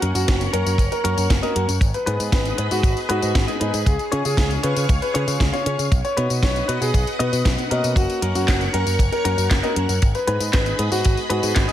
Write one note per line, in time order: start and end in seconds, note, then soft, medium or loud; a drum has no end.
0.00 0.11 F#2 medium
0.00 0.50 A#3 medium
0.00 0.50 C#4 medium
0.00 0.50 F#4 medium
0.00 1.80 A#4 medium
0.00 0.50 A#4 medium
0.00 1.80 C#5 medium
0.00 1.78 F#5 medium
0.00 1.80 C#6 medium
0.00 closed hi-hat medium
0.15 0.24 F#2 medium
0.15 0.39 F#4 medium
0.15 closed hi-hat soft
0.15 tambourine medium
0.28 0.46 F#1 medium
0.28 kick loud
0.28 snare loud
0.28 closed hi-hat medium
0.28 tambourine soft
0.41 closed hi-hat soft
0.41 tambourine soft
0.53 0.62 F#2 medium
0.53 0.74 A#3 medium
0.53 0.74 C#4 medium
0.53 0.74 F#4 medium
0.53 0.74 A#4 medium
0.53 0.77 A#4 medium
0.53 closed hi-hat medium
0.66 0.75 F#2 medium
0.66 closed hi-hat soft
0.66 tambourine medium
0.78 0.88 F#1 medium
0.78 kick loud
0.78 closed hi-hat medium
0.78 tambourine soft
0.92 1.24 A#4 medium
0.92 closed hi-hat soft
0.92 tambourine soft
1.04 1.14 F#2 medium
1.04 1.40 A#3 medium
1.04 1.40 C#4 medium
1.04 1.40 F#4 medium
1.04 1.40 A#4 loud
1.04 closed hi-hat loud
1.17 1.26 F#2 medium
1.17 closed hi-hat soft
1.17 tambourine medium
1.30 1.39 F#1 loud
1.30 kick loud
1.30 snare loud
1.30 closed hi-hat medium
1.30 tambourine soft
1.43 1.54 A#3 medium
1.43 1.54 C#4 medium
1.43 1.54 F#4 medium
1.43 1.75 A#4 medium
1.43 1.54 D#5 loud
1.43 closed hi-hat soft
1.43 tambourine soft
1.55 1.65 F#2 medium
1.55 1.69 A#3 medium
1.55 1.69 C#4 medium
1.55 1.69 F#4 medium
1.55 1.69 A#4 medium
1.55 closed hi-hat medium
1.69 1.78 F#2 medium
1.69 closed hi-hat soft
1.69 tambourine medium
1.81 1.90 G#1 medium
1.81 5.88 G#4 medium
1.81 3.85 B4 medium
1.81 3.85 D#5 medium
1.81 3.85 B5 medium
1.81 kick loud
1.81 closed hi-hat medium
1.81 tambourine soft
1.94 2.18 B4 medium
1.94 closed hi-hat soft
1.94 tambourine soft
2.06 2.16 G#2 medium
2.06 2.55 G#2 medium
2.06 2.55 B3 medium
2.06 2.55 D#4 medium
2.06 2.55 G#4 medium
2.06 2.55 B4 medium
2.06 closed hi-hat medium
2.20 2.29 G#2 medium
2.20 closed hi-hat soft
2.20 tambourine medium
2.32 2.51 G#1 medium
2.32 2.57 B4 medium
2.32 kick loud
2.32 snare loud
2.32 closed hi-hat medium
2.32 tambourine soft
2.45 closed hi-hat soft
2.45 tambourine soft
2.58 2.67 G#2 medium
2.58 2.79 G#2 medium
2.58 2.80 B3 medium
2.58 2.80 D#4 medium
2.58 2.79 G#4 medium
2.58 2.79 B4 medium
2.58 closed hi-hat medium
2.71 2.80 G#2 medium
2.71 2.95 F#4 medium
2.71 closed hi-hat soft
2.71 tambourine medium
2.83 2.93 G#1 medium
2.83 kick loud
2.83 closed hi-hat medium
2.83 tambourine soft
2.97 closed hi-hat soft
2.97 tambourine soft
3.09 3.19 G#2 medium
3.09 3.45 G#2 medium
3.09 3.45 B3 medium
3.09 3.45 D#4 medium
3.09 3.42 F#4 medium
3.09 3.45 G#4 medium
3.09 3.45 B4 loud
3.09 closed hi-hat medium
3.22 3.32 G#2 medium
3.22 closed hi-hat soft
3.22 tambourine medium
3.35 3.44 G#1 medium
3.35 kick loud
3.35 snare loud
3.35 closed hi-hat medium
3.35 tambourine soft
3.48 3.59 G#2 medium
3.48 3.59 B3 medium
3.48 3.59 D#4 medium
3.48 3.59 G#4 medium
3.48 3.59 D#5 loud
3.48 closed hi-hat soft
3.48 tambourine soft
3.60 3.70 G#2 medium
3.60 3.74 B3 medium
3.60 3.77 D#4 medium
3.60 3.74 D#4 medium
3.60 3.74 G#4 medium
3.60 3.74 B4 loud
3.60 closed hi-hat medium
3.74 3.83 G#2 medium
3.74 closed hi-hat soft
3.74 tambourine medium
3.86 3.96 C#2 medium
3.86 4.11 G#4 medium
3.86 5.90 C#5 medium
3.86 5.90 F5 medium
3.86 5.90 C#6 medium
3.86 kick loud
3.86 closed hi-hat medium
3.86 tambourine soft
3.99 closed hi-hat soft
3.99 tambourine soft
4.12 4.22 C#3 medium
4.12 4.60 C#3 medium
4.12 4.60 C#4 medium
4.12 4.60 F4 medium
4.12 4.60 G#4 medium
4.12 4.60 C#5 medium
4.12 closed hi-hat medium
4.25 4.34 C#3 medium
4.25 4.49 G#4 medium
4.25 closed hi-hat soft
4.25 tambourine medium
4.37 4.56 C#2 medium
4.37 kick loud
4.37 snare loud
4.37 closed hi-hat medium
4.37 tambourine soft
4.51 closed hi-hat soft
4.51 tambourine soft
4.63 4.73 C#3 medium
4.63 4.85 C#3 medium
4.63 4.85 C#4 medium
4.63 4.85 F4 medium
4.63 4.85 G#4 medium
4.63 4.87 B4 medium
4.63 4.85 C#5 medium
4.63 closed hi-hat medium
4.76 4.86 C#3 medium
4.76 closed hi-hat soft
4.76 tambourine medium
4.89 4.98 C#2 medium
4.89 kick loud
4.89 closed hi-hat medium
4.89 tambourine soft
5.02 5.34 B4 medium
5.02 closed hi-hat soft
5.02 tambourine soft
5.14 5.24 C#3 medium
5.14 5.50 C#3 medium
5.14 5.50 C#4 medium
5.14 5.50 F4 medium
5.14 5.50 G#4 medium
5.14 5.50 C#5 loud
5.14 closed hi-hat medium
5.28 5.37 C#3 medium
5.28 closed hi-hat soft
5.28 tambourine medium
5.40 5.49 C#2 loud
5.40 kick loud
5.40 snare loud
5.40 closed hi-hat medium
5.53 5.64 C#3 medium
5.53 5.64 C#4 medium
5.53 5.64 F4 medium
5.53 5.64 G#4 medium
5.53 5.85 C#5 medium
5.53 5.64 F5 loud
5.53 closed hi-hat soft
5.53 tambourine soft
5.66 5.75 C#3 medium
5.66 5.79 C#4 medium
5.66 5.79 F4 medium
5.66 5.79 G#4 medium
5.66 5.79 C#5 loud
5.66 closed hi-hat medium
5.79 5.88 C#3 medium
5.79 closed hi-hat soft
5.79 tambourine medium
5.92 6.01 B1 medium
5.92 7.95 B4 medium
5.92 7.95 D#5 medium
5.92 9.98 F#5 medium
5.92 7.95 D#6 medium
5.92 kick loud
5.92 closed hi-hat medium
5.92 tambourine soft
6.05 6.28 C#5 medium
6.05 closed hi-hat soft
6.05 tambourine soft
6.17 6.27 B2 medium
6.17 6.66 B2 medium
6.17 6.66 B3 medium
6.17 6.66 D#4 medium
6.17 6.66 F#4 medium
6.17 6.66 B4 medium
6.17 closed hi-hat medium
6.30 6.39 B2 medium
6.30 closed hi-hat soft
6.30 tambourine medium
6.43 6.61 B1 medium
6.43 6.67 C#5 medium
6.43 kick loud
6.43 snare loud
6.43 closed hi-hat medium
6.56 closed hi-hat soft
6.56 tambourine soft
6.68 6.78 B2 medium
6.68 6.90 B2 medium
6.68 6.90 B3 medium
6.68 6.90 D#4 medium
6.68 6.90 F#4 medium
6.68 6.90 B4 medium
6.68 closed hi-hat medium
6.81 6.91 B2 medium
6.81 7.05 G#4 medium
6.81 closed hi-hat soft
6.81 tambourine medium
6.94 7.03 B1 medium
6.94 kick loud
6.94 closed hi-hat medium
6.94 tambourine soft
7.07 closed hi-hat soft
7.07 tambourine soft
7.19 7.29 B2 medium
7.19 7.68 B2 medium
7.19 7.68 B3 medium
7.19 7.68 D#4 medium
7.19 7.68 F#4 medium
7.19 7.52 B4 medium
7.19 7.68 D#5 loud
7.19 closed hi-hat medium
7.33 7.42 B2 medium
7.33 closed hi-hat soft
7.33 tambourine medium
7.45 7.55 B1 medium
7.45 kick loud
7.45 snare loud
7.45 closed hi-hat medium
7.45 tambourine soft
7.58 closed hi-hat soft
7.58 tambourine soft
7.71 7.80 B2 medium
7.71 8.19 A#3 loud
7.71 8.19 C#4 medium
7.71 8.19 F#4 medium
7.71 8.19 A#4 loud
7.71 7.87 D#5 medium
7.71 closed hi-hat medium
7.84 7.93 B2 medium
7.84 closed hi-hat soft
7.84 tambourine medium
7.96 8.06 F#1 medium
7.96 8.21 F#4 medium
7.96 10.00 A#4 medium
7.96 10.00 C#5 medium
7.96 10.00 C#6 medium
7.96 kick loud
7.96 closed hi-hat medium
7.96 tambourine soft
8.10 closed hi-hat soft
8.10 tambourine soft
8.22 8.31 F#2 medium
8.22 8.71 A#3 medium
8.22 8.71 C#4 medium
8.22 8.71 F#4 medium
8.22 8.71 A#4 medium
8.22 closed hi-hat medium
8.35 8.44 F#2 medium
8.35 8.59 F#4 medium
8.35 closed hi-hat soft
8.35 tambourine medium
8.48 8.66 F#1 medium
8.48 kick loud
8.48 snare loud
8.48 clap medium
8.48 closed hi-hat medium
8.48 tambourine soft
8.61 closed hi-hat soft
8.61 tambourine soft
8.73 8.83 F#2 medium
8.73 8.95 A#3 medium
8.73 8.95 C#4 medium
8.73 8.95 F#4 medium
8.73 8.95 A#4 medium
8.73 8.98 A#4 medium
8.73 closed hi-hat medium
8.86 8.96 F#2 medium
8.86 closed hi-hat soft
8.86 tambourine medium
8.99 9.08 F#1 medium
8.99 kick loud
8.99 closed hi-hat medium
8.99 tambourine soft
9.12 9.44 A#4 medium
9.12 closed hi-hat soft
9.12 tambourine soft
9.25 9.34 F#2 medium
9.25 9.61 A#3 medium
9.25 9.61 C#4 medium
9.25 9.61 F#4 medium
9.25 9.61 A#4 loud
9.25 closed hi-hat medium
9.38 9.47 F#2 medium
9.38 closed hi-hat soft
9.38 tambourine medium
9.51 9.60 F#1 medium
9.51 kick loud
9.51 snare loud
9.51 clap medium
9.51 closed hi-hat medium
9.51 tambourine soft
9.63 9.74 A#3 medium
9.63 9.74 C#4 medium
9.63 9.74 F#4 medium
9.63 9.96 A#4 medium
9.63 9.74 D#5 loud
9.63 closed hi-hat soft
9.63 tambourine soft
9.76 9.85 F#2 medium
9.76 9.90 A#3 medium
9.76 9.90 C#4 medium
9.76 9.90 F#4 medium
9.76 9.90 A#4 medium
9.76 closed hi-hat medium
9.89 9.98 F#2 medium
9.89 closed hi-hat soft
9.89 tambourine medium
10.02 10.11 G#1 medium
10.02 11.72 G#4 medium
10.02 11.72 B4 medium
10.02 11.72 D#5 medium
10.02 11.72 B5 medium
10.02 kick loud
10.02 closed hi-hat medium
10.02 tambourine soft
10.15 10.39 B4 medium
10.15 closed hi-hat soft
10.15 tambourine soft
10.27 10.37 G#2 medium
10.27 10.76 G#2 medium
10.27 10.76 B3 medium
10.27 10.76 D#4 medium
10.27 10.76 G#4 medium
10.27 10.76 B4 medium
10.27 closed hi-hat medium
10.40 10.49 G#2 medium
10.40 closed hi-hat soft
10.40 tambourine medium
10.53 10.72 G#1 medium
10.53 10.77 B4 medium
10.53 kick loud
10.53 snare loud
10.53 clap medium
10.53 closed hi-hat medium
10.53 tambourine medium
10.66 closed hi-hat soft
10.66 tambourine soft
10.79 10.88 G#2 loud
10.79 11.00 G#2 medium
10.79 11.00 B3 medium
10.79 11.00 D#4 medium
10.79 11.00 G#4 medium
10.79 11.00 B4 medium
10.79 closed hi-hat medium
10.92 11.01 G#2 medium
10.92 11.16 F#4 loud
10.92 closed hi-hat soft
10.92 tambourine medium
11.05 11.14 G#1 medium
11.05 kick loud
11.05 closed hi-hat medium
11.05 tambourine medium
11.17 closed hi-hat soft
11.17 tambourine soft
11.30 11.39 G#2 medium
11.30 11.66 G#2 medium
11.30 11.66 B3 medium
11.30 11.66 D#4 medium
11.30 11.62 F#4 medium
11.30 11.66 G#4 medium
11.30 11.66 B4 loud
11.30 closed hi-hat medium
11.43 11.52 G#2 medium
11.43 closed hi-hat soft
11.43 tambourine medium
11.56 11.65 G#1 medium
11.56 kick loud
11.56 snare loud
11.56 clap medium
11.56 closed hi-hat medium
11.68 11.72 D#4 medium
11.68 11.72 G#4 medium
11.68 11.72 D#5 loud
11.68 closed hi-hat soft
11.68 tambourine soft